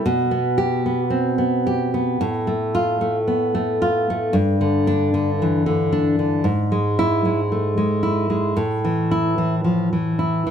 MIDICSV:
0, 0, Header, 1, 2, 480
1, 0, Start_track
1, 0, Tempo, 1088929
1, 11, Time_signature, 2, 2, 24, 8
1, 972, Tempo, 1060071
1, 3372, Tempo, 1077199
1, 4709, End_track
2, 0, Start_track
2, 0, Title_t, "Nylon-string guitar"
2, 0, Program_c, 0, 24
2, 25, Note_on_c, 0, 47, 87
2, 138, Note_on_c, 0, 59, 58
2, 254, Note_on_c, 0, 67, 84
2, 373, Note_off_c, 0, 59, 0
2, 378, Note_on_c, 0, 59, 61
2, 442, Note_off_c, 0, 67, 0
2, 486, Note_on_c, 0, 60, 57
2, 604, Note_off_c, 0, 59, 0
2, 609, Note_on_c, 0, 59, 56
2, 734, Note_on_c, 0, 67, 73
2, 850, Note_off_c, 0, 59, 0
2, 855, Note_on_c, 0, 59, 57
2, 960, Note_off_c, 0, 47, 0
2, 971, Note_off_c, 0, 60, 0
2, 973, Note_off_c, 0, 59, 0
2, 973, Note_off_c, 0, 67, 0
2, 973, Note_on_c, 0, 45, 85
2, 1093, Note_on_c, 0, 57, 58
2, 1217, Note_on_c, 0, 65, 88
2, 1331, Note_off_c, 0, 57, 0
2, 1336, Note_on_c, 0, 57, 60
2, 1407, Note_off_c, 0, 65, 0
2, 1456, Note_on_c, 0, 59, 55
2, 1574, Note_off_c, 0, 57, 0
2, 1579, Note_on_c, 0, 57, 65
2, 1702, Note_on_c, 0, 65, 75
2, 1824, Note_off_c, 0, 57, 0
2, 1830, Note_on_c, 0, 57, 61
2, 1920, Note_off_c, 0, 45, 0
2, 1935, Note_on_c, 0, 43, 88
2, 1939, Note_off_c, 0, 59, 0
2, 1941, Note_off_c, 0, 65, 0
2, 1944, Note_off_c, 0, 57, 0
2, 2060, Note_on_c, 0, 50, 58
2, 2180, Note_on_c, 0, 62, 93
2, 2295, Note_off_c, 0, 50, 0
2, 2301, Note_on_c, 0, 50, 65
2, 2371, Note_off_c, 0, 62, 0
2, 2427, Note_on_c, 0, 52, 61
2, 2532, Note_off_c, 0, 50, 0
2, 2538, Note_on_c, 0, 50, 63
2, 2656, Note_on_c, 0, 62, 77
2, 2771, Note_off_c, 0, 50, 0
2, 2776, Note_on_c, 0, 50, 54
2, 2877, Note_off_c, 0, 43, 0
2, 2890, Note_on_c, 0, 44, 85
2, 2895, Note_off_c, 0, 50, 0
2, 2895, Note_off_c, 0, 62, 0
2, 2901, Note_off_c, 0, 52, 0
2, 3015, Note_on_c, 0, 56, 63
2, 3138, Note_on_c, 0, 64, 94
2, 3252, Note_off_c, 0, 56, 0
2, 3258, Note_on_c, 0, 56, 59
2, 3324, Note_off_c, 0, 64, 0
2, 3377, Note_on_c, 0, 57, 51
2, 3487, Note_off_c, 0, 56, 0
2, 3492, Note_on_c, 0, 56, 52
2, 3605, Note_on_c, 0, 64, 68
2, 3720, Note_off_c, 0, 56, 0
2, 3725, Note_on_c, 0, 56, 51
2, 3824, Note_off_c, 0, 44, 0
2, 3844, Note_on_c, 0, 45, 83
2, 3845, Note_off_c, 0, 56, 0
2, 3845, Note_off_c, 0, 64, 0
2, 3849, Note_off_c, 0, 57, 0
2, 3969, Note_on_c, 0, 52, 60
2, 4089, Note_on_c, 0, 64, 81
2, 4202, Note_off_c, 0, 52, 0
2, 4207, Note_on_c, 0, 52, 50
2, 4281, Note_off_c, 0, 64, 0
2, 4323, Note_off_c, 0, 52, 0
2, 4325, Note_on_c, 0, 53, 51
2, 4449, Note_off_c, 0, 53, 0
2, 4451, Note_on_c, 0, 52, 49
2, 4568, Note_on_c, 0, 64, 59
2, 4686, Note_off_c, 0, 52, 0
2, 4691, Note_on_c, 0, 52, 51
2, 4709, Note_off_c, 0, 45, 0
2, 4709, Note_off_c, 0, 52, 0
2, 4709, Note_off_c, 0, 64, 0
2, 4709, End_track
0, 0, End_of_file